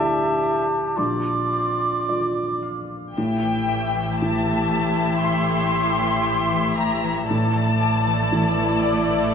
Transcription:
Already playing: D2 D3 F3 A3 E4 G4 D5 E5 A5
0.43 E4
0.96 A#1 A#2 F4 D5 D6
1.53 C4
2.07 F4 D5
2.62 F4
3.15 A1 A2 A3 E4 G4 E5 G5
3.43 E3
3.68 E5
3.95 E3
4.20 E3 G4 A5
4.47 E3
4.72 E5
4.97 E3
5.21 A2 C6
5.50 A3
5.75 E5
6.00 E3
6.27 G4
6.52 E3
6.77 E5 A#5
7.03 E3
7.29 A1 A2 A3 E4 A4 D5 A5
7.54 E3
7.79 D5
8.06 E3
8.32 E3 E4
8.58 E3
8.84 D5
9.09 E3

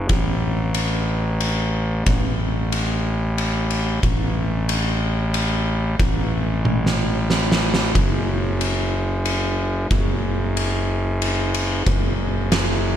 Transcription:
0.09 A1, kick, ride
0.74 ride
1.41 ride
2.06 A1, kick, ride
2.72 ride
3.38 ride
3.70 ride
4.03 A1, kick, ride
4.69 ride
5.34 ride
5.99 A1, kick, ride
6.65 high tom
6.86 snare
7.30 snare
7.52 snare
7.74 snare
7.95 F#1, kick, ride
8.61 ride
9.25 ride
9.90 F#1, kick, ride
10.57 ride
11.22 ride
11.54 ride
11.86 F#1, kick, ride
12.52 snare, ride

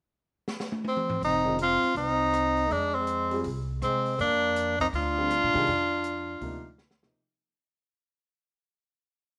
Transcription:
0.48 snare
0.60 snare
0.72 high tom
0.84 C4, high tom
0.97 mid tom
1.10 floor tom
1.21 F1 C4 D#4, open hi-hat
1.45 D#3 G#3 D4 F4
1.59 C4 F4, closed hi-hat
1.82 muted upright bass stroke, open hi-hat
1.95 C2 C4 D#4, open hi-hat
2.33 cross-stick, closed hi-hat
2.57 open hi-hat
2.70 F2 G#3 D4, open hi-hat
2.94 G#3 C4
3.07 closed hi-hat
3.31 G3 C4 F4 G#4, open hi-hat
3.44 C2, open hi-hat
3.82 C3 G#3 C4, cross-stick, closed hi-hat
4.06 open hi-hat
4.18 F2 A#3 D4, open hi-hat
4.56 closed hi-hat
4.79 C4 D#4, kick, open hi-hat
4.93 D2 D4 F4, open hi-hat
5.18 D3 G3 C4 F4
5.30 cross-stick, closed hi-hat
5.43 A#2
5.53 C3 D#3 G#3 D4 G4, open hi-hat
5.67 F2, open hi-hat
6.04 closed hi-hat
6.41 D2 C3 F3 A#3 D#4, open hi-hat
6.78 snare
6.91 snare
7.03 C3 F3 A#3 D#4, snare

